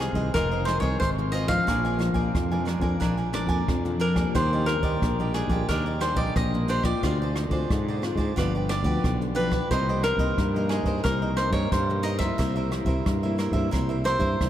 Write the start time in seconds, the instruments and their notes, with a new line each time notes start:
Already playing: fretless electric bass C2, nylon-string guitar C3 D#3 G#3 C4
0.00 cavaquinho F4 G#4 C5 D#5, cross-stick, closed hi-hat
0.13 fretless electric bass C2, nylon-string guitar D#3 G#3 C4, cavaquinho C5 D#5, kick
0.17 cavaquinho G#4
0.34 fretless electric bass F1, nylon-string guitar F2 D#3 G#3 C4, cavaquinho F4 G#4 A#4 C5 D#5, kick, cross-stick, closed hi-hat
0.51 cavaquinho G#4 C5 D#5
0.65 nylon-string guitar D#3 G#3 C4, cavaquinho F4 G#4 C5 D#5, cross-stick, closed hi-hat
0.80 fretless electric bass C2, cavaquinho G#4 C5 C#5 D#5, kick, closed hi-hat
1.00 fretless electric bass G#1, nylon-string guitar C3, cavaquinho C5, kick, cross-stick, closed hi-hat
1.18 nylon-string guitar D#3 G#3 C4, muted cavaquinho stroke
1.32 cavaquinho F4 G#4 C5 D#5, closed hi-hat
1.48 nylon-string guitar F3 G#3 D4, cavaquinho G#4 C5 D#5 F5, kick, cross-stick
1.67 fretless electric bass A#1, nylon-string guitar A#2, cavaquinho D4 A#4 D5 G#5, kick, cross-stick, closed hi-hat
1.85 cavaquinho A#4 D5 G#5
1.98 nylon-string guitar F3 G#3 D4, muted cavaquinho stroke, cross-stick, closed hi-hat
2.13 fretless electric bass A#1, cavaquinho A#4 D5 G#5, kick, closed hi-hat
2.34 nylon-string guitar F2, fretless electric bass F2, kick, cross-stick, closed hi-hat
2.51 nylon-string guitar F3 G#3 D4, cavaquinho A#4 D5 G#5
2.65 cavaquinho D4 A#4 D5 G#5, cross-stick, closed hi-hat
2.80 fretless electric bass F2, nylon-string guitar F3 G#3 D4, cavaquinho A#4 D5 G#5, kick
3.00 fretless electric bass A#1, nylon-string guitar A#2 F3 G#3 D4, cavaquinho D4 A#4 D5 G#5, kick, cross-stick, closed hi-hat
3.17 cavaquinho A#4 D5 G#5
3.33 nylon-string guitar F3 G#3 D4, cavaquinho D4 A#4 D5 G#5, cross-stick, closed hi-hat
3.47 fretless electric bass F2, cavaquinho A#4 D5 G#5, kick
3.68 nylon-string guitar F2, fretless electric bass F2, kick, cross-stick, closed hi-hat
3.85 nylon-string guitar F3 G#3 D4, muted cavaquinho stroke, closed hi-hat
4.00 cavaquinho D4 A#4 D5 G#5, closed hi-hat
4.16 nylon-string guitar G3 A#3 D4, cavaquinho A#4 D5 G#5, kick, cross-stick, closed hi-hat
4.35 fretless electric bass D#2, nylon-string guitar D#3, cavaquinho D4 G4 C5 D5 D#5, kick, cross-stick, closed hi-hat
4.53 cavaquinho G4 D5 D#5
4.66 nylon-string guitar G3 A#3 D4, cavaquinho A#4, muted cavaquinho stroke, cross-stick, closed hi-hat
4.80 fretless electric bass D#2, cavaquinho D5 D#5, kick, closed hi-hat
4.85 cavaquinho G4
5.01 fretless electric bass A#1, nylon-string guitar A#2, kick, cross-stick, closed hi-hat
5.19 nylon-string guitar G3 A#3 D4, cavaquinho G4 D5 D#5
5.34 cavaquinho D4 G4 G#4 D5 D#5, cross-stick, closed hi-hat
5.48 fretless electric bass A#1, nylon-string guitar G3 A#3 D4, cavaquinho G4 D5 D#5, kick
5.68 fretless electric bass D#2, nylon-string guitar D#3 G3 A#3 D4, cavaquinho D4 G4 A#4 D5 D#5, kick, cross-stick, closed hi-hat
5.86 cavaquinho G4 D5 D#5
6.00 nylon-string guitar G3 A#3 D4, cavaquinho D4 G4 C5 D5 D#5, cross-stick, closed hi-hat
6.15 fretless electric bass A#1, cavaquinho G4 D5 D#5, kick, closed hi-hat
6.36 fretless electric bass A#1, nylon-string guitar A#2, cavaquinho D#5, kick, cross-stick, closed hi-hat
6.54 nylon-string guitar G3 A#3 D4, muted cavaquinho stroke
6.68 cavaquinho D4 G4 C5 D5 D#5, closed hi-hat
6.84 nylon-string guitar G#3 C4 F4, cavaquinho G4 D5 D#5, kick, cross-stick
7.03 fretless electric bass D2, nylon-string guitar D3, cavaquinho F4 G#4 C5 D5, kick, cross-stick, closed hi-hat
7.22 cavaquinho G#4 C5 D5
7.36 muted cavaquinho stroke, cross-stick, closed hi-hat
7.49 fretless electric bass D2, nylon-string guitar G#3 C4 F4, cavaquinho G#4 C5 D5, kick, closed hi-hat
7.70 fretless electric bass G#2, nylon-string guitar D3, kick, cross-stick, closed hi-hat
7.88 cavaquinho G#4 C5 D5
8.02 nylon-string guitar G#3 C4 F4, cavaquinho F4 G#4 C5 D5, cross-stick, closed hi-hat
8.16 fretless electric bass G#2, cavaquinho G#4 C5 D5, kick
8.36 fretless electric bass G1, nylon-string guitar G2 F3 B3 D4, cavaquinho F4 G4 B4 D5, kick, cross-stick, closed hi-hat
8.55 cavaquinho G4 B4 D5
8.69 cavaquinho F4 G4 B4 D5, cross-stick, closed hi-hat
8.83 fretless electric bass D2, nylon-string guitar F3 B3 D4, cavaquinho G4 B4 D5, kick
9.03 fretless electric bass B1, nylon-string guitar D3, kick, cross-stick, closed hi-hat
9.21 muted cavaquinho stroke, closed hi-hat
9.35 nylon-string guitar F3 B3 D4, cavaquinho F4 G4 B4 D5, closed hi-hat
9.51 cavaquinho G4 B4 D5, kick, cross-stick, closed hi-hat
9.70 fretless electric bass C2, nylon-string guitar C3 G3 A#3 D#4, cavaquinho D#4 A#4 C5 D#5, kick, cross-stick, closed hi-hat
9.89 cavaquinho A#4 C5 D#5
10.03 cavaquinho A#4, muted cavaquinho stroke, cross-stick, closed hi-hat
10.17 fretless electric bass C2, nylon-string guitar G3 A#3 D#4, cavaquinho C5 D#5, kick, closed hi-hat
10.21 cavaquinho A#4
10.37 nylon-string guitar G2, fretless electric bass G2, kick, cross-stick, closed hi-hat
10.54 nylon-string guitar G3 A#3 D#4, cavaquinho A#4 C5 D#5
10.69 cavaquinho D#4 G#4 A#4 C5 D#5, cross-stick, closed hi-hat
10.83 fretless electric bass G2, cavaquinho C5 D#5, kick
10.87 cavaquinho A#4
11.03 fretless electric bass C2, nylon-string guitar C3 G3 A#3 D#4, cavaquinho D#4 A#4 C5 D#5, kick, cross-stick, closed hi-hat
11.22 cavaquinho A#4 C5 D#5
11.37 cavaquinho D#4 A#4 C5 D#5, cross-stick, closed hi-hat
11.50 fretless electric bass G2, nylon-string guitar G3 A#3 D#4, cavaquinho A#4 C5 C#5 D#5, kick, closed hi-hat
11.72 fretless electric bass G2, nylon-string guitar G2, cavaquinho C5, kick, cross-stick, closed hi-hat
11.90 nylon-string guitar G3 A#3 D#4, muted cavaquinho stroke
12.03 cavaquinho D#4 A#4 C5 D#5, closed hi-hat
12.19 nylon-string guitar G3 A#3 E4, cavaquinho A#4 C5 D#5 E5, kick, cross-stick
12.38 fretless electric bass C2, nylon-string guitar C3, cavaquinho E4 A#4 C5 E5, kick, cross-stick, closed hi-hat
12.56 cavaquinho A#4 C5 E5
12.71 nylon-string guitar G3 A#3 E4, muted cavaquinho stroke, cross-stick, closed hi-hat
12.85 fretless electric bass C2, cavaquinho A#4 C5 E5, kick, closed hi-hat
13.06 fretless electric bass G2, nylon-string guitar G2, kick, cross-stick, closed hi-hat
13.23 nylon-string guitar G3 A#3 E4, cavaquinho A#4 C5 E5
13.38 cavaquinho E4 A#4 C5 E5, cross-stick, closed hi-hat
13.52 fretless electric bass G2, nylon-string guitar G3, cavaquinho A#4 C5 E5, kick
13.56 nylon-string guitar A#3 E4
13.71 fretless electric bass C2, nylon-string guitar C3 G3 A#3 E4, cavaquinho E4 A#4 C5 E5, kick, cross-stick, closed hi-hat
13.89 cavaquinho A#4 C5 E5
14.04 nylon-string guitar G3 A#3 E4, cavaquinho E4 A#4 C5 E5, cross-stick, closed hi-hat
14.19 fretless electric bass G2, cavaquinho A#4 C5 E5, kick
14.41 fretless electric bass C2, nylon-string guitar G2, kick, cross-stick, closed hi-hat